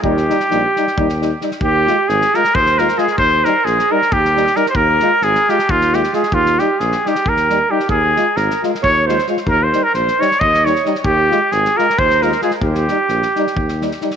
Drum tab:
SD |-oooo-oo-oo-oo|--o-oooo-ooooo|--o-oo-o-ooooo|--o-oooo-ooooo|
BD |o-------o-----|o-------o-----|o-------o-----|o-------o-----|

SD |-oo-oooo-oo--o|--o-oooo--oooo|--o-oooo-ooooo|--o-oooo-ooooo|
BD |o-------o-----|o-------o-----|o-------o-----|o-------o-----|

SD |-oo-oooo-ooooo|
BD |o-------o-----|